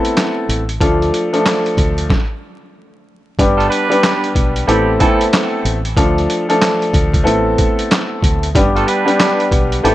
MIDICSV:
0, 0, Header, 1, 5, 480
1, 0, Start_track
1, 0, Tempo, 645161
1, 600, Time_signature, 4, 2, 24, 8
1, 7401, End_track
2, 0, Start_track
2, 0, Title_t, "Horn section"
2, 0, Program_c, 0, 61
2, 2658, Note_on_c, 0, 65, 83
2, 2658, Note_on_c, 0, 69, 107
2, 2659, Note_on_c, 0, 57, 85
2, 2735, Note_off_c, 0, 57, 0
2, 2735, Note_off_c, 0, 65, 0
2, 2735, Note_off_c, 0, 69, 0
2, 2747, Note_on_c, 0, 55, 92
2, 2748, Note_on_c, 0, 62, 98
2, 2748, Note_on_c, 0, 71, 112
2, 3204, Note_off_c, 0, 55, 0
2, 3205, Note_off_c, 0, 62, 0
2, 3205, Note_off_c, 0, 71, 0
2, 3472, Note_on_c, 0, 55, 87
2, 3472, Note_on_c, 0, 64, 93
2, 3473, Note_on_c, 0, 67, 98
2, 3667, Note_off_c, 0, 55, 0
2, 3667, Note_off_c, 0, 64, 0
2, 3668, Note_off_c, 0, 67, 0
2, 3719, Note_on_c, 0, 52, 91
2, 3719, Note_on_c, 0, 60, 89
2, 3719, Note_on_c, 0, 69, 102
2, 3912, Note_off_c, 0, 52, 0
2, 3912, Note_off_c, 0, 60, 0
2, 3912, Note_off_c, 0, 69, 0
2, 6514, Note_on_c, 0, 57, 79
2, 6514, Note_on_c, 0, 65, 87
2, 6514, Note_on_c, 0, 69, 96
2, 6584, Note_off_c, 0, 57, 0
2, 6584, Note_off_c, 0, 65, 0
2, 6584, Note_off_c, 0, 69, 0
2, 6606, Note_on_c, 0, 55, 97
2, 6606, Note_on_c, 0, 62, 98
2, 6606, Note_on_c, 0, 71, 101
2, 7054, Note_off_c, 0, 71, 0
2, 7055, Note_off_c, 0, 55, 0
2, 7055, Note_off_c, 0, 62, 0
2, 7316, Note_on_c, 0, 55, 99
2, 7316, Note_on_c, 0, 64, 84
2, 7316, Note_on_c, 0, 67, 105
2, 7401, Note_off_c, 0, 55, 0
2, 7401, Note_off_c, 0, 64, 0
2, 7401, Note_off_c, 0, 67, 0
2, 7401, End_track
3, 0, Start_track
3, 0, Title_t, "Upright piano"
3, 0, Program_c, 1, 0
3, 0, Note_on_c, 1, 57, 85
3, 0, Note_on_c, 1, 59, 85
3, 0, Note_on_c, 1, 60, 81
3, 0, Note_on_c, 1, 64, 81
3, 0, Note_on_c, 1, 69, 97
3, 449, Note_off_c, 1, 57, 0
3, 450, Note_off_c, 1, 59, 0
3, 451, Note_off_c, 1, 60, 0
3, 452, Note_off_c, 1, 64, 0
3, 453, Note_off_c, 1, 69, 0
3, 598, Note_on_c, 1, 53, 93
3, 601, Note_on_c, 1, 57, 79
3, 602, Note_on_c, 1, 62, 82
3, 605, Note_on_c, 1, 65, 90
3, 607, Note_on_c, 1, 69, 98
3, 953, Note_off_c, 1, 53, 0
3, 955, Note_off_c, 1, 57, 0
3, 956, Note_off_c, 1, 62, 0
3, 957, Note_off_c, 1, 65, 0
3, 958, Note_off_c, 1, 69, 0
3, 987, Note_on_c, 1, 53, 88
3, 989, Note_on_c, 1, 57, 85
3, 992, Note_on_c, 1, 62, 79
3, 994, Note_on_c, 1, 65, 77
3, 996, Note_on_c, 1, 69, 99
3, 1559, Note_off_c, 1, 53, 0
3, 1560, Note_off_c, 1, 57, 0
3, 1561, Note_off_c, 1, 62, 0
3, 1562, Note_off_c, 1, 65, 0
3, 1563, Note_off_c, 1, 69, 0
3, 2523, Note_on_c, 1, 55, 95
3, 2524, Note_on_c, 1, 59, 89
3, 2527, Note_on_c, 1, 62, 88
3, 2529, Note_on_c, 1, 67, 83
3, 2531, Note_on_c, 1, 71, 97
3, 2876, Note_off_c, 1, 55, 0
3, 2877, Note_off_c, 1, 59, 0
3, 2878, Note_off_c, 1, 62, 0
3, 2879, Note_off_c, 1, 67, 0
3, 2880, Note_off_c, 1, 71, 0
3, 2897, Note_on_c, 1, 55, 94
3, 2899, Note_on_c, 1, 59, 81
3, 2901, Note_on_c, 1, 62, 89
3, 2903, Note_on_c, 1, 67, 81
3, 2906, Note_on_c, 1, 71, 98
3, 3467, Note_off_c, 1, 59, 0
3, 3473, Note_off_c, 1, 55, 0
3, 3476, Note_off_c, 1, 62, 0
3, 3476, Note_off_c, 1, 67, 0
3, 3476, Note_on_c, 1, 57, 92
3, 3478, Note_off_c, 1, 71, 0
3, 3478, Note_on_c, 1, 59, 81
3, 3481, Note_on_c, 1, 60, 86
3, 3483, Note_on_c, 1, 64, 88
3, 3485, Note_on_c, 1, 69, 96
3, 3704, Note_off_c, 1, 57, 0
3, 3705, Note_off_c, 1, 59, 0
3, 3706, Note_off_c, 1, 60, 0
3, 3707, Note_off_c, 1, 64, 0
3, 3708, Note_off_c, 1, 69, 0
3, 3719, Note_on_c, 1, 57, 89
3, 3721, Note_on_c, 1, 59, 88
3, 3724, Note_on_c, 1, 60, 84
3, 3725, Note_on_c, 1, 64, 81
3, 3728, Note_on_c, 1, 69, 100
3, 4290, Note_off_c, 1, 57, 0
3, 4291, Note_off_c, 1, 59, 0
3, 4292, Note_off_c, 1, 60, 0
3, 4293, Note_off_c, 1, 64, 0
3, 4294, Note_off_c, 1, 69, 0
3, 4438, Note_on_c, 1, 53, 93
3, 4440, Note_on_c, 1, 57, 79
3, 4443, Note_on_c, 1, 62, 85
3, 4445, Note_on_c, 1, 65, 88
3, 4447, Note_on_c, 1, 69, 98
3, 4793, Note_off_c, 1, 53, 0
3, 4794, Note_off_c, 1, 57, 0
3, 4796, Note_off_c, 1, 62, 0
3, 4797, Note_off_c, 1, 65, 0
3, 4798, Note_off_c, 1, 69, 0
3, 4827, Note_on_c, 1, 53, 92
3, 4829, Note_on_c, 1, 57, 83
3, 4831, Note_on_c, 1, 62, 81
3, 4833, Note_on_c, 1, 65, 84
3, 4836, Note_on_c, 1, 69, 109
3, 5372, Note_off_c, 1, 57, 0
3, 5380, Note_off_c, 1, 69, 0
3, 5383, Note_on_c, 1, 57, 93
3, 5385, Note_on_c, 1, 59, 83
3, 5387, Note_on_c, 1, 60, 86
3, 5389, Note_on_c, 1, 64, 80
3, 5392, Note_on_c, 1, 69, 102
3, 5398, Note_off_c, 1, 53, 0
3, 5401, Note_off_c, 1, 62, 0
3, 5402, Note_off_c, 1, 65, 0
3, 6294, Note_off_c, 1, 57, 0
3, 6295, Note_off_c, 1, 59, 0
3, 6296, Note_off_c, 1, 60, 0
3, 6297, Note_off_c, 1, 64, 0
3, 6298, Note_off_c, 1, 69, 0
3, 6361, Note_on_c, 1, 55, 98
3, 6363, Note_on_c, 1, 59, 89
3, 6366, Note_on_c, 1, 62, 92
3, 6368, Note_on_c, 1, 67, 86
3, 6370, Note_on_c, 1, 71, 101
3, 6715, Note_off_c, 1, 55, 0
3, 6716, Note_off_c, 1, 59, 0
3, 6717, Note_off_c, 1, 62, 0
3, 6718, Note_off_c, 1, 67, 0
3, 6719, Note_off_c, 1, 71, 0
3, 6736, Note_on_c, 1, 55, 96
3, 6738, Note_on_c, 1, 59, 84
3, 6739, Note_on_c, 1, 62, 93
3, 6742, Note_on_c, 1, 67, 85
3, 6744, Note_on_c, 1, 71, 96
3, 7308, Note_off_c, 1, 59, 0
3, 7313, Note_off_c, 1, 55, 0
3, 7315, Note_off_c, 1, 62, 0
3, 7316, Note_off_c, 1, 67, 0
3, 7317, Note_off_c, 1, 71, 0
3, 7317, Note_on_c, 1, 57, 90
3, 7319, Note_on_c, 1, 59, 81
3, 7321, Note_on_c, 1, 60, 87
3, 7323, Note_on_c, 1, 64, 83
3, 7325, Note_on_c, 1, 69, 97
3, 7401, Note_off_c, 1, 57, 0
3, 7401, Note_off_c, 1, 59, 0
3, 7401, Note_off_c, 1, 60, 0
3, 7401, Note_off_c, 1, 64, 0
3, 7401, Note_off_c, 1, 69, 0
3, 7401, End_track
4, 0, Start_track
4, 0, Title_t, "Fingered electric bass"
4, 0, Program_c, 2, 33
4, 363, Note_on_c, 2, 33, 83
4, 578, Note_off_c, 2, 33, 0
4, 601, Note_on_c, 2, 38, 109
4, 817, Note_off_c, 2, 38, 0
4, 1321, Note_on_c, 2, 38, 94
4, 1537, Note_off_c, 2, 38, 0
4, 2521, Note_on_c, 2, 31, 105
4, 2736, Note_off_c, 2, 31, 0
4, 3240, Note_on_c, 2, 35, 94
4, 3456, Note_off_c, 2, 35, 0
4, 3482, Note_on_c, 2, 33, 98
4, 3697, Note_off_c, 2, 33, 0
4, 4202, Note_on_c, 2, 33, 84
4, 4418, Note_off_c, 2, 33, 0
4, 4440, Note_on_c, 2, 38, 110
4, 4656, Note_off_c, 2, 38, 0
4, 5161, Note_on_c, 2, 38, 97
4, 5376, Note_off_c, 2, 38, 0
4, 5403, Note_on_c, 2, 33, 104
4, 5618, Note_off_c, 2, 33, 0
4, 6121, Note_on_c, 2, 38, 92
4, 6337, Note_off_c, 2, 38, 0
4, 6361, Note_on_c, 2, 31, 108
4, 6577, Note_off_c, 2, 31, 0
4, 7081, Note_on_c, 2, 35, 98
4, 7297, Note_off_c, 2, 35, 0
4, 7323, Note_on_c, 2, 33, 104
4, 7401, Note_off_c, 2, 33, 0
4, 7401, End_track
5, 0, Start_track
5, 0, Title_t, "Drums"
5, 35, Note_on_c, 9, 42, 57
5, 110, Note_off_c, 9, 42, 0
5, 125, Note_on_c, 9, 42, 99
5, 130, Note_on_c, 9, 38, 124
5, 133, Note_on_c, 9, 39, 97
5, 199, Note_off_c, 9, 42, 0
5, 204, Note_off_c, 9, 38, 0
5, 207, Note_off_c, 9, 39, 0
5, 369, Note_on_c, 9, 42, 81
5, 443, Note_off_c, 9, 42, 0
5, 513, Note_on_c, 9, 42, 54
5, 588, Note_off_c, 9, 42, 0
5, 600, Note_on_c, 9, 36, 119
5, 604, Note_on_c, 9, 42, 102
5, 674, Note_off_c, 9, 36, 0
5, 678, Note_off_c, 9, 42, 0
5, 761, Note_on_c, 9, 42, 35
5, 835, Note_off_c, 9, 42, 0
5, 847, Note_on_c, 9, 42, 91
5, 921, Note_off_c, 9, 42, 0
5, 994, Note_on_c, 9, 42, 54
5, 1069, Note_off_c, 9, 42, 0
5, 1084, Note_on_c, 9, 38, 116
5, 1086, Note_on_c, 9, 42, 106
5, 1088, Note_on_c, 9, 39, 93
5, 1159, Note_off_c, 9, 38, 0
5, 1161, Note_off_c, 9, 42, 0
5, 1162, Note_off_c, 9, 39, 0
5, 1235, Note_on_c, 9, 42, 38
5, 1309, Note_off_c, 9, 42, 0
5, 1319, Note_on_c, 9, 36, 92
5, 1324, Note_on_c, 9, 42, 68
5, 1394, Note_off_c, 9, 36, 0
5, 1398, Note_off_c, 9, 42, 0
5, 1473, Note_on_c, 9, 42, 54
5, 1547, Note_off_c, 9, 42, 0
5, 1560, Note_on_c, 9, 36, 110
5, 1565, Note_on_c, 9, 38, 91
5, 1634, Note_off_c, 9, 36, 0
5, 1639, Note_off_c, 9, 38, 0
5, 2519, Note_on_c, 9, 36, 120
5, 2524, Note_on_c, 9, 42, 105
5, 2594, Note_off_c, 9, 36, 0
5, 2598, Note_off_c, 9, 42, 0
5, 2681, Note_on_c, 9, 42, 37
5, 2755, Note_off_c, 9, 42, 0
5, 2767, Note_on_c, 9, 42, 93
5, 2841, Note_off_c, 9, 42, 0
5, 2914, Note_on_c, 9, 42, 55
5, 2989, Note_off_c, 9, 42, 0
5, 3003, Note_on_c, 9, 38, 120
5, 3005, Note_on_c, 9, 42, 110
5, 3007, Note_on_c, 9, 39, 97
5, 3078, Note_off_c, 9, 38, 0
5, 3080, Note_off_c, 9, 42, 0
5, 3081, Note_off_c, 9, 39, 0
5, 3153, Note_on_c, 9, 42, 38
5, 3228, Note_off_c, 9, 42, 0
5, 3239, Note_on_c, 9, 36, 93
5, 3243, Note_on_c, 9, 42, 68
5, 3313, Note_off_c, 9, 36, 0
5, 3317, Note_off_c, 9, 42, 0
5, 3393, Note_on_c, 9, 42, 54
5, 3467, Note_off_c, 9, 42, 0
5, 3487, Note_on_c, 9, 42, 91
5, 3561, Note_off_c, 9, 42, 0
5, 3721, Note_on_c, 9, 42, 70
5, 3724, Note_on_c, 9, 36, 93
5, 3796, Note_off_c, 9, 42, 0
5, 3798, Note_off_c, 9, 36, 0
5, 3875, Note_on_c, 9, 42, 58
5, 3950, Note_off_c, 9, 42, 0
5, 3964, Note_on_c, 9, 42, 97
5, 3969, Note_on_c, 9, 38, 124
5, 3972, Note_on_c, 9, 39, 97
5, 4039, Note_off_c, 9, 42, 0
5, 4043, Note_off_c, 9, 38, 0
5, 4047, Note_off_c, 9, 39, 0
5, 4207, Note_on_c, 9, 42, 78
5, 4282, Note_off_c, 9, 42, 0
5, 4353, Note_on_c, 9, 42, 55
5, 4427, Note_off_c, 9, 42, 0
5, 4439, Note_on_c, 9, 36, 118
5, 4444, Note_on_c, 9, 42, 103
5, 4513, Note_off_c, 9, 36, 0
5, 4518, Note_off_c, 9, 42, 0
5, 4600, Note_on_c, 9, 42, 37
5, 4674, Note_off_c, 9, 42, 0
5, 4686, Note_on_c, 9, 42, 94
5, 4760, Note_off_c, 9, 42, 0
5, 4834, Note_on_c, 9, 42, 57
5, 4908, Note_off_c, 9, 42, 0
5, 4923, Note_on_c, 9, 38, 121
5, 4925, Note_on_c, 9, 42, 109
5, 4927, Note_on_c, 9, 39, 96
5, 4998, Note_off_c, 9, 38, 0
5, 5000, Note_off_c, 9, 42, 0
5, 5001, Note_off_c, 9, 39, 0
5, 5074, Note_on_c, 9, 42, 36
5, 5149, Note_off_c, 9, 42, 0
5, 5159, Note_on_c, 9, 36, 93
5, 5164, Note_on_c, 9, 42, 69
5, 5234, Note_off_c, 9, 36, 0
5, 5238, Note_off_c, 9, 42, 0
5, 5309, Note_on_c, 9, 36, 90
5, 5313, Note_on_c, 9, 42, 56
5, 5383, Note_off_c, 9, 36, 0
5, 5388, Note_off_c, 9, 42, 0
5, 5408, Note_on_c, 9, 42, 91
5, 5482, Note_off_c, 9, 42, 0
5, 5642, Note_on_c, 9, 42, 72
5, 5645, Note_on_c, 9, 36, 92
5, 5717, Note_off_c, 9, 42, 0
5, 5719, Note_off_c, 9, 36, 0
5, 5795, Note_on_c, 9, 42, 58
5, 5870, Note_off_c, 9, 42, 0
5, 5885, Note_on_c, 9, 42, 103
5, 5890, Note_on_c, 9, 38, 120
5, 5893, Note_on_c, 9, 39, 100
5, 5960, Note_off_c, 9, 42, 0
5, 5965, Note_off_c, 9, 38, 0
5, 5968, Note_off_c, 9, 39, 0
5, 6119, Note_on_c, 9, 36, 100
5, 6129, Note_on_c, 9, 42, 84
5, 6194, Note_off_c, 9, 36, 0
5, 6203, Note_off_c, 9, 42, 0
5, 6273, Note_on_c, 9, 42, 54
5, 6347, Note_off_c, 9, 42, 0
5, 6360, Note_on_c, 9, 36, 124
5, 6364, Note_on_c, 9, 42, 107
5, 6434, Note_off_c, 9, 36, 0
5, 6438, Note_off_c, 9, 42, 0
5, 6520, Note_on_c, 9, 42, 36
5, 6595, Note_off_c, 9, 42, 0
5, 6606, Note_on_c, 9, 42, 96
5, 6681, Note_off_c, 9, 42, 0
5, 6754, Note_on_c, 9, 42, 58
5, 6828, Note_off_c, 9, 42, 0
5, 6844, Note_on_c, 9, 38, 122
5, 6846, Note_on_c, 9, 42, 108
5, 6847, Note_on_c, 9, 39, 95
5, 6918, Note_off_c, 9, 38, 0
5, 6920, Note_off_c, 9, 42, 0
5, 6921, Note_off_c, 9, 39, 0
5, 6994, Note_on_c, 9, 42, 38
5, 7068, Note_off_c, 9, 42, 0
5, 7080, Note_on_c, 9, 36, 93
5, 7084, Note_on_c, 9, 42, 71
5, 7154, Note_off_c, 9, 36, 0
5, 7158, Note_off_c, 9, 42, 0
5, 7234, Note_on_c, 9, 42, 55
5, 7308, Note_off_c, 9, 42, 0
5, 7328, Note_on_c, 9, 42, 92
5, 7401, Note_off_c, 9, 42, 0
5, 7401, End_track
0, 0, End_of_file